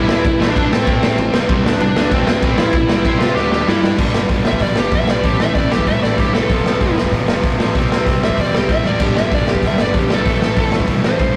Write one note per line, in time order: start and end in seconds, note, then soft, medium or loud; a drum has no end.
0.08 0.24 D2 medium
0.08 0.24 D3 loud
0.08 0.25 A3 loud
0.08 0.25 D4 loud
0.08 0.49 E4 loud
0.08 snare loud
0.25 muted distorted electric guitar stroke medium
0.25 muted picked electric bass stroke soft
0.25 muted overdriven electric guitar stroke medium
0.25 kick loud
0.25 crash medium
0.40 0.55 A1 loud
0.40 0.56 A2 loud
0.40 0.56 E3 loud
0.40 0.55 A3 loud
0.40 snare loud
0.49 0.72 D4 loud
0.56 1.14 A2 loud
0.56 1.18 A3 loud
0.56 1.18 E4 loud
0.56 1.19 A4 loud
0.56 kick loud
0.56 crash medium
0.72 0.86 C4 medium
0.72 snare loud
0.87 1.31 C4 medium
0.87 kick loud
0.87 crash medium
1.03 snare loud
1.17 1.32 A1 medium
1.17 1.31 A2 medium
1.17 1.31 E3 medium
1.17 crash medium
1.32 1.48 C2 medium
1.32 1.47 C3 loud
1.32 1.48 G3 loud
1.32 1.48 C4 loud
1.32 snare loud
1.48 1.62 C2 loud
1.48 1.64 C3 loud
1.48 1.65 G3 loud
1.48 1.65 C4 loud
1.48 kick loud
1.48 crash medium
1.63 1.78 D2 medium
1.63 1.81 D3 loud
1.63 1.81 A3 loud
1.63 1.81 D4 loud
1.63 snare loud
1.79 1.94 C2 medium
1.79 1.94 C3 medium
1.79 1.94 G3 medium
1.79 2.13 D4 medium
1.79 crash medium
1.95 2.39 D2 loud
1.95 2.42 D3 loud
1.95 2.42 A3 loud
1.95 2.43 D4 loud
1.95 snare loud
2.11 2.56 C4 medium
2.11 kick loud
2.11 crash medium
2.27 snare loud
2.42 2.57 A1 loud
2.42 2.58 A2 loud
2.42 2.58 E3 loud
2.42 2.58 A3 loud
2.42 kick loud
2.42 crash medium
2.58 2.72 F2 medium
2.58 2.72 F3 loud
2.58 2.74 C4 loud
2.58 2.96 E4 loud
2.58 2.74 F4 loud
2.58 snare loud
2.72 muted picked electric bass stroke soft
2.72 muted distorted electric guitar stroke medium
2.72 muted overdriven electric guitar stroke medium
2.72 kick loud
2.72 crash medium
2.87 3.04 C2 loud
2.87 3.04 C3 loud
2.87 3.04 G3 loud
2.87 3.03 C4 loud
2.87 snare loud
2.98 3.19 E4 loud
3.04 3.34 C3 loud
3.04 3.36 C4 loud
3.04 3.36 G4 loud
3.04 3.36 C5 loud
3.04 kick loud
3.04 crash medium
3.19 3.35 F4 loud
3.19 snare loud
3.35 3.65 D2 loud
3.35 3.67 D3 medium
3.35 3.67 A3 loud
3.35 3.66 D4 loud
3.35 3.51 G4 loud
3.35 snare medium
3.52 3.69 G4 loud
3.52 snare medium
3.67 3.82 G2 loud
3.67 3.81 G3 loud
3.67 3.81 D4 loud
3.67 3.92 E4 medium
3.67 3.82 G4 loud
3.67 snare loud
3.82 3.97 G2 medium
3.82 3.98 G3 medium
3.82 3.98 D4 loud
3.82 3.98 G4 loud
3.82 snare loud
3.98 4.12 G1 medium
3.98 4.12 G2 medium
3.98 4.12 D3 loud
3.98 4.12 G3 loud
3.98 5.09 B3 medium
3.98 kick loud
3.98 crash loud
4.02 5.07 D4 medium
4.13 4.28 G1 medium
4.13 4.26 G2 medium
4.13 4.26 D3 medium
4.13 4.27 G3 medium
4.13 snare loud
4.27 4.43 G1 medium
4.27 4.43 G2 medium
4.27 4.43 D3 loud
4.27 4.42 G3 loud
4.27 kick loud
4.27 open hi-hat medium
4.44 4.59 G1 medium
4.44 4.58 G2 medium
4.44 4.59 D3 medium
4.44 4.59 G3 loud
4.44 snare loud
4.48 4.62 E5 loud
4.53 kick medium
4.59 4.74 B1 medium
4.59 4.76 G2 medium
4.59 4.76 D3 medium
4.59 4.76 G3 medium
4.59 4.77 D5 medium
4.59 kick medium
4.59 open hi-hat medium
4.76 4.91 G1 medium
4.76 4.89 G2 medium
4.76 4.90 D3 medium
4.76 4.90 G3 loud
4.76 4.93 G4 medium
4.76 snare loud
4.90 5.05 F2 medium
4.90 5.07 G2 medium
4.90 5.06 D3 medium
4.90 5.06 G3 loud
4.90 kick loud
4.90 open hi-hat medium
4.95 5.09 E5 medium
5.07 5.22 B1 medium
5.07 5.23 G2 medium
5.07 5.21 D3 medium
5.07 5.22 G3 medium
5.07 5.24 B3 medium
5.07 5.23 D4 medium
5.07 5.25 D5 medium
5.07 snare loud
5.21 5.37 A1 medium
5.21 5.38 A2 loud
5.21 5.38 E3 loud
5.21 5.38 A3 loud
5.21 5.40 G4 medium
5.21 kick loud
5.21 open hi-hat medium
5.26 6.35 C4 medium
5.26 6.33 E4 loud
5.39 5.53 A1 medium
5.39 5.54 A2 medium
5.39 5.55 E3 medium
5.39 5.56 A3 loud
5.39 5.55 E5 loud
5.39 snare loud
5.54 5.68 A1 medium
5.54 5.70 A2 medium
5.54 5.70 E3 medium
5.54 5.71 A3 loud
5.54 5.70 D5 medium
5.54 kick loud
5.54 open hi-hat medium
5.70 5.84 A1 medium
5.70 5.84 A2 medium
5.70 5.85 E3 medium
5.70 5.86 A3 medium
5.70 5.86 G4 medium
5.70 snare loud
5.79 kick medium
5.86 6.00 C2 medium
5.86 6.01 A2 medium
5.86 6.01 E3 medium
5.86 6.00 A3 medium
5.86 6.02 E5 loud
5.86 kick loud
5.86 open hi-hat medium
6.02 6.15 A1 medium
6.02 6.16 A2 medium
6.02 6.16 E3 loud
6.02 6.17 A3 loud
6.02 6.18 D5 medium
6.02 snare loud
6.17 6.31 G2 medium
6.17 6.32 A2 medium
6.17 6.32 E3 medium
6.17 6.32 A3 loud
6.17 6.33 G4 medium
6.17 kick loud
6.17 open hi-hat medium
6.33 6.47 C2 medium
6.33 6.48 A2 medium
6.33 6.48 E3 medium
6.33 6.48 A3 loud
6.33 6.51 C4 medium
6.33 6.49 E4 medium
6.33 6.94 A4 loud
6.33 snare loud
6.49 6.63 F1 medium
6.49 6.64 F2 medium
6.49 6.63 C3 loud
6.49 6.63 F3 loud
6.49 7.58 A3 medium
6.49 7.58 C4 medium
6.49 7.57 F4 medium
6.49 kick loud
6.49 open hi-hat medium
6.64 6.78 F1 medium
6.64 6.78 F2 medium
6.64 6.79 C3 medium
6.64 6.79 F3 medium
6.64 snare loud
6.80 6.94 F1 medium
6.80 6.94 F2 medium
6.80 6.94 C3 medium
6.80 6.93 F3 medium
6.80 kick loud
6.80 open hi-hat medium
6.94 7.10 F1 medium
6.94 7.09 F2 medium
6.94 7.11 C3 medium
6.94 7.11 F3 loud
6.94 snare loud
7.05 kick medium
7.11 7.25 A1 medium
7.11 7.27 F2 medium
7.11 7.26 C3 medium
7.11 7.25 F3 medium
7.11 kick loud
7.11 open hi-hat medium
7.26 7.42 F1 medium
7.26 7.42 F2 medium
7.26 7.42 C3 medium
7.26 7.42 F3 loud
7.26 snare loud
7.43 7.57 D2 loud
7.43 7.58 F2 medium
7.43 7.57 C3 medium
7.43 7.57 F3 medium
7.43 kick loud
7.43 open hi-hat medium
7.58 7.73 A1 medium
7.58 7.74 F2 medium
7.58 7.72 C3 medium
7.58 7.73 F3 loud
7.58 7.75 A3 medium
7.58 7.74 C4 medium
7.58 7.73 F4 medium
7.58 snare loud
7.73 7.88 C2 medium
7.73 7.90 C3 medium
7.73 7.90 G3 medium
7.73 7.89 C4 loud
7.73 kick loud
7.73 open hi-hat medium
7.77 8.84 E4 medium
7.90 8.04 C2 medium
7.90 8.04 C3 medium
7.90 8.05 G3 medium
7.90 8.05 C4 loud
7.90 snare loud
8.05 8.19 C2 medium
8.05 8.20 C3 medium
8.05 8.20 G3 medium
8.05 8.19 C4 medium
8.05 kick loud
8.05 open hi-hat medium
8.20 8.36 C2 medium
8.20 8.35 C3 medium
8.20 8.35 G3 medium
8.20 8.35 C4 medium
8.20 snare loud
8.25 8.39 E5 loud
8.30 kick medium
8.36 8.51 E2 medium
8.36 8.51 C3 medium
8.36 8.51 G3 medium
8.36 8.50 C4 medium
8.36 kick medium
8.36 open hi-hat medium
8.41 8.54 D5 medium
8.51 8.67 C2 medium
8.51 8.66 C3 medium
8.51 8.66 G3 medium
8.51 8.67 C4 loud
8.51 snare loud
8.58 8.71 G4 medium
8.67 8.82 A2 medium
8.67 8.84 C3 medium
8.67 8.83 G3 loud
8.67 8.82 C4 medium
8.67 kick loud
8.67 open hi-hat medium
8.72 8.85 E5 medium
8.83 8.97 E2 medium
8.83 8.99 C3 medium
8.83 8.98 G3 medium
8.83 8.99 C4 medium
8.83 8.99 E4 medium
8.83 9.01 D5 medium
8.83 snare medium
8.99 9.13 G1 medium
8.99 9.15 G2 medium
8.99 9.14 D3 loud
8.99 9.14 G3 loud
8.99 10.10 B3 medium
8.99 10.09 D4 medium
8.99 kick loud
8.99 crash loud
9.03 9.17 G4 medium
9.15 9.29 G1 medium
9.15 9.30 G2 medium
9.15 9.30 D3 medium
9.15 9.31 G3 loud
9.15 9.31 E5 loud
9.15 snare loud
9.31 9.45 G1 medium
9.31 9.46 G2 medium
9.31 9.45 D3 medium
9.31 9.45 G3 medium
9.31 9.48 D5 medium
9.31 kick loud
9.31 open hi-hat medium
9.46 9.61 G1 medium
9.46 9.62 G2 medium
9.46 9.63 D3 medium
9.46 9.63 G3 loud
9.46 snare loud
9.51 9.64 G4 medium
9.55 kick medium
9.62 9.76 B1 medium
9.62 9.79 G2 medium
9.62 9.79 D3 medium
9.62 9.78 G3 medium
9.62 kick medium
9.62 open hi-hat medium
9.67 9.80 E5 loud
9.78 9.92 G1 medium
9.78 9.93 G2 medium
9.78 9.93 D3 loud
9.78 9.94 G3 loud
9.78 9.95 D5 medium
9.78 snare loud
9.94 10.08 F2 medium
9.94 10.09 G2 medium
9.94 10.09 D3 loud
9.94 10.08 G3 medium
9.94 kick loud
9.94 open hi-hat medium
9.99 10.14 G4 medium
10.09 10.23 B1 medium
10.09 10.25 G2 medium
10.09 10.24 D3 loud
10.09 10.24 G3 loud
10.09 10.25 B3 medium
10.09 10.25 D4 medium
10.09 snare loud
10.14 10.73 A4 loud
10.25 10.39 A1 medium
10.25 10.41 A2 loud
10.25 10.41 E3 loud
10.25 10.41 A3 loud
10.25 11.36 C4 loud
10.25 kick loud
10.25 open hi-hat medium
10.29 11.33 E4 medium
10.41 10.55 A1 medium
10.41 10.56 A2 medium
10.41 10.56 E3 medium
10.41 10.58 A3 loud
10.41 snare loud
10.56 10.70 A1 medium
10.56 10.74 A2 medium
10.56 10.73 E3 loud
10.56 10.73 A3 loud
10.56 kick loud
10.56 open hi-hat medium
10.72 10.86 A1 medium
10.72 10.87 A2 medium
10.72 10.87 E3 medium
10.72 10.88 A3 loud
10.72 snare loud
10.80 kick medium
10.87 11.01 C2 medium
10.87 11.05 A2 medium
10.87 11.05 E3 medium
10.87 11.04 A3 medium
10.87 kick medium
10.87 open hi-hat medium
11.04 11.17 A1 medium
11.04 11.19 A2 medium
11.04 11.19 E3 loud
11.04 11.20 A3 loud
11.04 11.35 C5 loud
11.04 snare loud
11.19 11.33 G2 medium
11.19 11.36 A2 medium
11.19 11.35 E3 medium
11.19 11.35 A3 loud
11.19 kick loud
11.19 open hi-hat medium